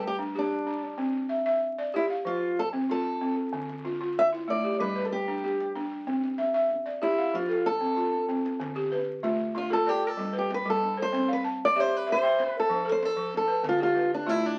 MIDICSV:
0, 0, Header, 1, 4, 480
1, 0, Start_track
1, 0, Tempo, 631579
1, 762, Time_signature, 4, 2, 24, 8
1, 11086, End_track
2, 0, Start_track
2, 0, Title_t, "Steel-string acoustic guitar"
2, 0, Program_c, 0, 25
2, 56, Note_on_c, 0, 67, 95
2, 119, Note_off_c, 0, 67, 0
2, 293, Note_on_c, 0, 62, 65
2, 623, Note_off_c, 0, 62, 0
2, 1489, Note_on_c, 0, 64, 75
2, 1553, Note_off_c, 0, 64, 0
2, 1723, Note_on_c, 0, 65, 78
2, 1970, Note_on_c, 0, 69, 100
2, 1972, Note_off_c, 0, 65, 0
2, 2035, Note_off_c, 0, 69, 0
2, 2212, Note_on_c, 0, 69, 86
2, 2545, Note_off_c, 0, 69, 0
2, 3182, Note_on_c, 0, 76, 111
2, 3246, Note_off_c, 0, 76, 0
2, 3421, Note_on_c, 0, 74, 86
2, 3647, Note_off_c, 0, 74, 0
2, 3650, Note_on_c, 0, 71, 88
2, 3824, Note_off_c, 0, 71, 0
2, 3838, Note_on_c, 0, 69, 53
2, 3891, Note_off_c, 0, 69, 0
2, 3894, Note_on_c, 0, 67, 72
2, 4343, Note_off_c, 0, 67, 0
2, 5339, Note_on_c, 0, 64, 70
2, 5583, Note_off_c, 0, 64, 0
2, 5585, Note_on_c, 0, 65, 76
2, 5822, Note_on_c, 0, 69, 89
2, 5826, Note_off_c, 0, 65, 0
2, 6268, Note_off_c, 0, 69, 0
2, 7278, Note_on_c, 0, 65, 80
2, 7389, Note_off_c, 0, 65, 0
2, 7396, Note_on_c, 0, 69, 84
2, 7515, Note_off_c, 0, 69, 0
2, 7515, Note_on_c, 0, 67, 86
2, 7624, Note_off_c, 0, 67, 0
2, 7652, Note_on_c, 0, 69, 92
2, 7879, Note_off_c, 0, 69, 0
2, 7892, Note_on_c, 0, 67, 86
2, 7995, Note_off_c, 0, 67, 0
2, 8013, Note_on_c, 0, 71, 95
2, 8116, Note_off_c, 0, 71, 0
2, 8131, Note_on_c, 0, 69, 96
2, 8336, Note_off_c, 0, 69, 0
2, 8378, Note_on_c, 0, 72, 95
2, 8601, Note_off_c, 0, 72, 0
2, 8610, Note_on_c, 0, 71, 82
2, 8669, Note_off_c, 0, 71, 0
2, 8854, Note_on_c, 0, 74, 109
2, 8968, Note_off_c, 0, 74, 0
2, 8968, Note_on_c, 0, 72, 110
2, 9093, Note_off_c, 0, 72, 0
2, 9093, Note_on_c, 0, 71, 90
2, 9191, Note_off_c, 0, 71, 0
2, 9212, Note_on_c, 0, 72, 110
2, 9471, Note_off_c, 0, 72, 0
2, 9471, Note_on_c, 0, 71, 110
2, 9561, Note_off_c, 0, 71, 0
2, 9572, Note_on_c, 0, 69, 89
2, 9796, Note_off_c, 0, 69, 0
2, 9819, Note_on_c, 0, 72, 93
2, 9920, Note_off_c, 0, 72, 0
2, 9920, Note_on_c, 0, 69, 99
2, 10150, Note_off_c, 0, 69, 0
2, 10163, Note_on_c, 0, 69, 90
2, 10368, Note_off_c, 0, 69, 0
2, 10402, Note_on_c, 0, 65, 90
2, 10501, Note_off_c, 0, 65, 0
2, 10511, Note_on_c, 0, 65, 85
2, 10744, Note_off_c, 0, 65, 0
2, 10749, Note_on_c, 0, 62, 83
2, 10862, Note_off_c, 0, 62, 0
2, 10862, Note_on_c, 0, 64, 86
2, 10988, Note_off_c, 0, 64, 0
2, 10988, Note_on_c, 0, 62, 79
2, 11086, Note_off_c, 0, 62, 0
2, 11086, End_track
3, 0, Start_track
3, 0, Title_t, "Balafon"
3, 0, Program_c, 1, 12
3, 0, Note_on_c, 1, 71, 62
3, 142, Note_on_c, 1, 62, 76
3, 267, Note_on_c, 1, 67, 61
3, 273, Note_off_c, 1, 71, 0
3, 392, Note_off_c, 1, 62, 0
3, 506, Note_on_c, 1, 62, 62
3, 635, Note_off_c, 1, 67, 0
3, 743, Note_on_c, 1, 60, 74
3, 754, Note_off_c, 1, 62, 0
3, 982, Note_on_c, 1, 76, 56
3, 993, Note_off_c, 1, 60, 0
3, 1099, Note_off_c, 1, 76, 0
3, 1109, Note_on_c, 1, 76, 68
3, 1356, Note_off_c, 1, 76, 0
3, 1356, Note_on_c, 1, 74, 64
3, 1473, Note_on_c, 1, 67, 77
3, 1597, Note_on_c, 1, 77, 60
3, 1710, Note_on_c, 1, 53, 73
3, 1719, Note_off_c, 1, 67, 0
3, 1720, Note_off_c, 1, 74, 0
3, 1841, Note_off_c, 1, 77, 0
3, 1958, Note_off_c, 1, 53, 0
3, 2075, Note_on_c, 1, 60, 69
3, 2200, Note_on_c, 1, 65, 58
3, 2321, Note_off_c, 1, 60, 0
3, 2440, Note_on_c, 1, 60, 63
3, 2564, Note_off_c, 1, 65, 0
3, 2680, Note_on_c, 1, 50, 78
3, 2684, Note_off_c, 1, 60, 0
3, 2923, Note_on_c, 1, 65, 61
3, 2924, Note_off_c, 1, 50, 0
3, 3036, Note_off_c, 1, 65, 0
3, 3045, Note_on_c, 1, 65, 67
3, 3287, Note_off_c, 1, 65, 0
3, 3287, Note_on_c, 1, 64, 67
3, 3403, Note_on_c, 1, 57, 71
3, 3525, Note_on_c, 1, 67, 63
3, 3645, Note_on_c, 1, 55, 75
3, 3647, Note_off_c, 1, 57, 0
3, 3649, Note_off_c, 1, 64, 0
3, 3765, Note_on_c, 1, 71, 63
3, 3768, Note_off_c, 1, 67, 0
3, 3888, Note_off_c, 1, 55, 0
3, 4011, Note_on_c, 1, 62, 66
3, 4128, Note_off_c, 1, 71, 0
3, 4134, Note_on_c, 1, 67, 52
3, 4252, Note_off_c, 1, 62, 0
3, 4374, Note_on_c, 1, 62, 68
3, 4494, Note_off_c, 1, 67, 0
3, 4613, Note_off_c, 1, 62, 0
3, 4614, Note_on_c, 1, 60, 75
3, 4849, Note_on_c, 1, 76, 63
3, 4853, Note_off_c, 1, 60, 0
3, 4963, Note_off_c, 1, 76, 0
3, 4972, Note_on_c, 1, 76, 74
3, 5212, Note_on_c, 1, 74, 55
3, 5213, Note_off_c, 1, 76, 0
3, 5332, Note_on_c, 1, 67, 73
3, 5458, Note_on_c, 1, 77, 58
3, 5573, Note_off_c, 1, 67, 0
3, 5573, Note_off_c, 1, 74, 0
3, 5575, Note_on_c, 1, 53, 73
3, 5688, Note_on_c, 1, 69, 59
3, 5696, Note_off_c, 1, 77, 0
3, 5815, Note_off_c, 1, 53, 0
3, 5931, Note_on_c, 1, 60, 64
3, 6051, Note_off_c, 1, 69, 0
3, 6051, Note_on_c, 1, 65, 58
3, 6173, Note_off_c, 1, 60, 0
3, 6298, Note_on_c, 1, 60, 62
3, 6413, Note_off_c, 1, 65, 0
3, 6533, Note_on_c, 1, 50, 85
3, 6536, Note_off_c, 1, 60, 0
3, 6655, Note_on_c, 1, 67, 68
3, 6773, Note_off_c, 1, 50, 0
3, 6777, Note_on_c, 1, 71, 63
3, 7014, Note_off_c, 1, 67, 0
3, 7016, Note_on_c, 1, 57, 81
3, 7016, Note_on_c, 1, 65, 65
3, 7136, Note_off_c, 1, 71, 0
3, 7246, Note_off_c, 1, 65, 0
3, 7255, Note_off_c, 1, 57, 0
3, 7255, Note_on_c, 1, 65, 68
3, 7364, Note_off_c, 1, 65, 0
3, 7373, Note_on_c, 1, 65, 73
3, 7374, Note_on_c, 1, 69, 68
3, 7493, Note_off_c, 1, 65, 0
3, 7498, Note_on_c, 1, 74, 70
3, 7614, Note_off_c, 1, 69, 0
3, 7730, Note_on_c, 1, 55, 80
3, 7851, Note_on_c, 1, 71, 64
3, 7856, Note_off_c, 1, 74, 0
3, 7971, Note_off_c, 1, 55, 0
3, 8096, Note_on_c, 1, 55, 77
3, 8211, Note_off_c, 1, 71, 0
3, 8334, Note_off_c, 1, 55, 0
3, 8340, Note_on_c, 1, 72, 60
3, 8455, Note_on_c, 1, 60, 80
3, 8575, Note_off_c, 1, 72, 0
3, 8575, Note_on_c, 1, 77, 70
3, 8693, Note_off_c, 1, 60, 0
3, 8697, Note_on_c, 1, 81, 66
3, 8932, Note_off_c, 1, 77, 0
3, 8935, Note_on_c, 1, 67, 78
3, 8935, Note_on_c, 1, 76, 72
3, 9053, Note_off_c, 1, 81, 0
3, 9162, Note_off_c, 1, 76, 0
3, 9172, Note_off_c, 1, 67, 0
3, 9172, Note_on_c, 1, 76, 68
3, 9285, Note_off_c, 1, 76, 0
3, 9293, Note_on_c, 1, 79, 64
3, 9295, Note_on_c, 1, 76, 81
3, 9411, Note_off_c, 1, 76, 0
3, 9414, Note_on_c, 1, 72, 78
3, 9530, Note_off_c, 1, 79, 0
3, 9648, Note_on_c, 1, 53, 87
3, 9766, Note_on_c, 1, 69, 70
3, 9771, Note_off_c, 1, 72, 0
3, 9887, Note_off_c, 1, 53, 0
3, 10006, Note_on_c, 1, 53, 77
3, 10125, Note_off_c, 1, 69, 0
3, 10243, Note_on_c, 1, 71, 70
3, 10246, Note_off_c, 1, 53, 0
3, 10361, Note_on_c, 1, 50, 88
3, 10484, Note_off_c, 1, 71, 0
3, 10488, Note_on_c, 1, 67, 69
3, 10602, Note_off_c, 1, 50, 0
3, 10604, Note_on_c, 1, 71, 58
3, 10841, Note_on_c, 1, 65, 76
3, 10843, Note_on_c, 1, 57, 86
3, 10845, Note_off_c, 1, 67, 0
3, 10964, Note_off_c, 1, 71, 0
3, 11070, Note_off_c, 1, 65, 0
3, 11083, Note_off_c, 1, 57, 0
3, 11086, End_track
4, 0, Start_track
4, 0, Title_t, "Djembe"
4, 2688, Note_on_c, 9, 62, 22
4, 2688, Note_on_c, 9, 64, 67
4, 2764, Note_off_c, 9, 62, 0
4, 2764, Note_off_c, 9, 64, 0
4, 2807, Note_on_c, 9, 62, 49
4, 2883, Note_off_c, 9, 62, 0
4, 2927, Note_on_c, 9, 63, 58
4, 3003, Note_off_c, 9, 63, 0
4, 3171, Note_on_c, 9, 64, 62
4, 3247, Note_off_c, 9, 64, 0
4, 3303, Note_on_c, 9, 62, 50
4, 3379, Note_off_c, 9, 62, 0
4, 3415, Note_on_c, 9, 63, 60
4, 3491, Note_off_c, 9, 63, 0
4, 3654, Note_on_c, 9, 64, 64
4, 3730, Note_off_c, 9, 64, 0
4, 3774, Note_on_c, 9, 62, 49
4, 3850, Note_off_c, 9, 62, 0
4, 3895, Note_on_c, 9, 62, 20
4, 3895, Note_on_c, 9, 63, 65
4, 3971, Note_off_c, 9, 62, 0
4, 3971, Note_off_c, 9, 63, 0
4, 4131, Note_on_c, 9, 64, 61
4, 4207, Note_off_c, 9, 64, 0
4, 4259, Note_on_c, 9, 62, 49
4, 4335, Note_off_c, 9, 62, 0
4, 4373, Note_on_c, 9, 63, 65
4, 4449, Note_off_c, 9, 63, 0
4, 4612, Note_on_c, 9, 64, 64
4, 4688, Note_off_c, 9, 64, 0
4, 4740, Note_on_c, 9, 62, 49
4, 4816, Note_off_c, 9, 62, 0
4, 4856, Note_on_c, 9, 63, 65
4, 4932, Note_off_c, 9, 63, 0
4, 5099, Note_on_c, 9, 64, 60
4, 5175, Note_off_c, 9, 64, 0
4, 5218, Note_on_c, 9, 62, 43
4, 5294, Note_off_c, 9, 62, 0
4, 5347, Note_on_c, 9, 63, 65
4, 5423, Note_off_c, 9, 63, 0
4, 5589, Note_on_c, 9, 64, 61
4, 5665, Note_off_c, 9, 64, 0
4, 5711, Note_on_c, 9, 62, 53
4, 5787, Note_off_c, 9, 62, 0
4, 5823, Note_on_c, 9, 63, 66
4, 5899, Note_off_c, 9, 63, 0
4, 5943, Note_on_c, 9, 62, 18
4, 6019, Note_off_c, 9, 62, 0
4, 6063, Note_on_c, 9, 64, 36
4, 6139, Note_off_c, 9, 64, 0
4, 6183, Note_on_c, 9, 64, 45
4, 6259, Note_off_c, 9, 64, 0
4, 6304, Note_on_c, 9, 62, 48
4, 6380, Note_off_c, 9, 62, 0
4, 6427, Note_on_c, 9, 62, 58
4, 6503, Note_off_c, 9, 62, 0
4, 6545, Note_on_c, 9, 62, 66
4, 6545, Note_on_c, 9, 64, 67
4, 6621, Note_off_c, 9, 62, 0
4, 6621, Note_off_c, 9, 64, 0
4, 6788, Note_on_c, 9, 63, 65
4, 6864, Note_off_c, 9, 63, 0
4, 7023, Note_on_c, 9, 62, 67
4, 7023, Note_on_c, 9, 64, 73
4, 7099, Note_off_c, 9, 62, 0
4, 7099, Note_off_c, 9, 64, 0
4, 7264, Note_on_c, 9, 63, 72
4, 7340, Note_off_c, 9, 63, 0
4, 7508, Note_on_c, 9, 62, 66
4, 7508, Note_on_c, 9, 64, 70
4, 7584, Note_off_c, 9, 62, 0
4, 7584, Note_off_c, 9, 64, 0
4, 7748, Note_on_c, 9, 63, 77
4, 7824, Note_off_c, 9, 63, 0
4, 7984, Note_on_c, 9, 62, 71
4, 7984, Note_on_c, 9, 64, 75
4, 8060, Note_off_c, 9, 62, 0
4, 8060, Note_off_c, 9, 64, 0
4, 8226, Note_on_c, 9, 63, 73
4, 8302, Note_off_c, 9, 63, 0
4, 8470, Note_on_c, 9, 62, 85
4, 8470, Note_on_c, 9, 64, 81
4, 8546, Note_off_c, 9, 62, 0
4, 8546, Note_off_c, 9, 64, 0
4, 8942, Note_on_c, 9, 62, 80
4, 8942, Note_on_c, 9, 64, 83
4, 9018, Note_off_c, 9, 62, 0
4, 9018, Note_off_c, 9, 64, 0
4, 9188, Note_on_c, 9, 63, 84
4, 9264, Note_off_c, 9, 63, 0
4, 9421, Note_on_c, 9, 62, 78
4, 9421, Note_on_c, 9, 64, 76
4, 9497, Note_off_c, 9, 62, 0
4, 9497, Note_off_c, 9, 64, 0
4, 9660, Note_on_c, 9, 63, 82
4, 9736, Note_off_c, 9, 63, 0
4, 9900, Note_on_c, 9, 62, 80
4, 9900, Note_on_c, 9, 64, 70
4, 9976, Note_off_c, 9, 62, 0
4, 9976, Note_off_c, 9, 64, 0
4, 10139, Note_on_c, 9, 63, 80
4, 10215, Note_off_c, 9, 63, 0
4, 10369, Note_on_c, 9, 62, 81
4, 10369, Note_on_c, 9, 64, 79
4, 10445, Note_off_c, 9, 62, 0
4, 10445, Note_off_c, 9, 64, 0
4, 10611, Note_on_c, 9, 63, 76
4, 10687, Note_off_c, 9, 63, 0
4, 10859, Note_on_c, 9, 62, 71
4, 10859, Note_on_c, 9, 64, 79
4, 10935, Note_off_c, 9, 62, 0
4, 10935, Note_off_c, 9, 64, 0
4, 11086, End_track
0, 0, End_of_file